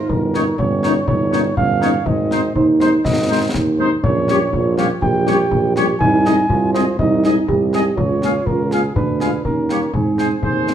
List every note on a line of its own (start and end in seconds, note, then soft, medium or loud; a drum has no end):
0.00 0.55 D#4 soft
0.00 0.12 C5 medium
0.09 0.50 G1 soft
0.09 0.59 A#4 soft
0.09 concert bass drum medium
0.34 0.43 A#3 soft
0.34 0.43 C#4 soft
0.34 0.43 D#4 soft
0.34 0.43 C#5 soft
0.34 snare soft
0.58 1.00 G1 medium
0.58 1.09 C#4 soft
0.58 1.05 C#5 medium
0.58 concert bass drum medium
0.83 0.92 A#3 soft
0.83 0.93 C#4 soft
0.83 0.92 D#4 soft
0.83 0.93 D#4 soft
0.83 0.92 C#5 soft
0.83 snare soft
1.08 1.49 G1 medium
1.08 1.57 D#4 medium
1.08 1.54 C#5 medium
1.08 concert bass drum medium
1.32 1.42 A#3 soft
1.32 1.42 C#4 soft
1.32 1.41 D#4 soft
1.32 1.42 D#4 soft
1.32 1.41 C#5 soft
1.32 snare soft
1.57 1.98 G1 medium
1.57 2.03 C#4 soft
1.57 2.08 F5 medium
1.57 concert bass drum medium
1.81 1.91 A#3 soft
1.81 1.91 C#4 soft
1.81 1.90 D#4 soft
1.81 1.91 D#4 soft
1.81 1.90 C#5 soft
1.81 snare soft
2.06 2.48 G#1 medium
2.06 2.53 C4 soft
2.06 2.55 D#5 medium
2.06 concert bass drum medium
2.30 2.40 G#3 soft
2.30 2.40 C4 soft
2.30 2.40 D#4 soft
2.30 2.40 C5 soft
2.30 snare soft
2.55 2.97 D#2 medium
2.55 3.06 D#4 medium
2.55 2.67 C5 medium
2.55 concert bass drum medium
2.80 2.90 G#3 soft
2.80 2.90 C4 soft
2.80 2.89 D#4 soft
2.80 2.89 C5 soft
2.80 2.91 C5 medium
2.80 snare soft
3.05 3.46 G#1 medium
3.05 3.75 C4 medium
3.05 3.51 D#5 medium
3.05 concert bass drum medium
3.05 snare soft
3.30 3.39 G#3 soft
3.30 3.39 C4 soft
3.30 3.38 D#4 soft
3.30 3.39 D#4 soft
3.30 3.38 C5 soft
3.54 3.95 D#2 medium
3.54 concert bass drum medium
3.54 snare soft
3.79 3.88 G#3 soft
3.79 3.88 C4 soft
3.79 3.88 D#4 soft
3.79 3.90 C5 medium
3.79 3.88 C5 soft
4.03 4.44 A#1 medium
4.03 4.54 C#4 medium
4.03 4.73 C#5 medium
4.03 concert bass drum medium
4.28 4.38 G3 soft
4.28 4.37 C#4 soft
4.28 4.37 G4 soft
4.28 4.38 G4 soft
4.28 4.38 C#5 soft
4.28 snare soft
4.53 4.90 A#1 medium
4.53 5.04 F4 medium
4.53 concert bass drum medium
4.77 4.86 G3 soft
4.77 4.86 C#4 soft
4.77 4.86 G4 soft
4.77 4.87 G4 soft
4.77 4.87 C#5 soft
4.77 4.89 F5 medium
4.77 snare soft
5.02 5.43 A#1 medium
5.02 6.00 G4 medium
5.02 5.72 G5 medium
5.02 concert bass drum medium
5.26 5.35 G3 soft
5.26 5.35 C#4 soft
5.26 5.36 G4 soft
5.26 5.35 C#5 soft
5.26 snare soft
5.51 5.92 A#1 medium
5.51 concert bass drum medium
5.76 5.85 G3 soft
5.76 5.85 C#4 soft
5.76 5.85 G4 soft
5.76 5.85 C#5 soft
5.76 5.87 G5 medium
5.76 snare soft
6.00 6.41 C2 medium
6.00 6.46 D#4 medium
6.00 6.70 G#5 medium
6.00 concert bass drum medium
6.25 6.35 G#3 soft
6.25 6.35 C4 soft
6.25 6.34 D#4 soft
6.25 6.34 G#4 soft
6.25 6.34 D#5 soft
6.25 snare soft
6.50 6.91 C2 medium
6.50 6.95 F4 medium
6.50 concert bass drum medium
6.74 6.84 G#3 soft
6.74 6.84 C4 soft
6.74 6.84 D#4 soft
6.74 6.84 G#4 soft
6.74 6.97 C5 medium
6.74 6.84 D#5 soft
6.74 snare soft
6.99 7.40 C2 medium
6.99 7.45 D#4 medium
6.99 7.45 D#5 medium
6.99 concert bass drum medium
7.24 7.33 G#3 soft
7.24 7.33 C4 soft
7.24 7.33 D#4 soft
7.24 7.33 G#4 soft
7.24 7.33 D#5 soft
7.24 snare soft
7.48 7.89 C2 medium
7.48 7.98 G4 medium
7.48 concert bass drum medium
7.73 7.82 G#3 soft
7.73 7.82 C4 soft
7.73 7.82 D#4 soft
7.73 7.83 G#4 soft
7.73 7.83 D#5 soft
7.73 snare soft
7.97 8.38 C#2 medium
7.97 8.95 F4 medium
7.97 8.48 C#5 medium
7.97 concert bass drum medium
8.22 8.31 G#3 soft
8.22 8.31 A#3 soft
8.22 8.31 F4 soft
8.22 8.32 G#4 soft
8.22 8.32 F5 soft
8.22 snare soft
8.46 8.87 C#2 medium
8.46 8.74 A#4 medium
8.46 concert bass drum medium
8.71 8.80 G#3 soft
8.71 8.80 A#3 soft
8.71 8.80 F4 soft
8.71 8.81 G#4 soft
8.71 8.96 G#4 medium
8.71 8.81 F5 soft
8.71 snare soft
8.96 9.37 D2 medium
8.96 9.41 D4 soft
8.96 9.42 B4 medium
8.96 concert bass drum medium
9.20 9.30 G#3 soft
9.20 9.30 D4 soft
9.20 9.30 F4 soft
9.20 9.29 G#4 soft
9.20 9.30 F5 soft
9.20 snare soft
9.45 9.86 D#2 soft
9.45 9.95 C#4 soft
9.45 9.91 A#4 medium
9.45 concert bass drum medium
9.69 9.79 G3 soft
9.69 9.79 C#4 soft
9.69 9.79 F4 soft
9.69 9.79 G4 soft
9.69 9.79 C#5 soft
9.69 snare soft
9.93 10.35 G#2 soft
9.93 10.74 C4 soft
9.93 10.74 G#4 medium
9.93 concert bass drum medium
10.18 10.28 G#3 soft
10.18 10.28 C4 soft
10.18 10.28 D#4 soft
10.18 10.27 G#4 soft
10.18 10.27 C5 soft
10.18 snare soft
10.42 10.74 D#2 soft
10.42 10.74 C5 soft
10.42 concert bass drum medium
10.67 10.74 G#3 soft
10.67 10.74 C4 soft
10.67 10.74 D#4 soft
10.67 snare soft